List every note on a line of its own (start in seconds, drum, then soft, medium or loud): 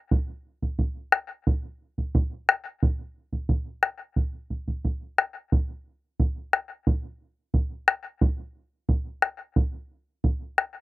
0.11 bombo low medium
0.62 bombo low medium
0.79 bombo low medium
1.12 bombo rim medium
1.47 bombo low medium
1.98 bombo low soft
2.15 bombo low medium
2.49 bombo rim medium
2.83 bombo low medium
3.33 bombo low soft
3.49 bombo low medium
3.83 bombo rim soft
4.16 bombo low medium
4.50 bombo low soft
4.68 bombo low soft
4.85 bombo low medium
5.18 bombo rim medium
5.52 bombo low medium
6.20 bombo low medium
6.53 bombo rim soft
6.87 bombo low medium
7.54 bombo low medium
7.88 bombo rim medium
8.21 bombo low medium
8.89 bombo low medium
9.22 bombo rim soft
9.56 bombo low medium
10.24 bombo low medium
10.58 bombo rim soft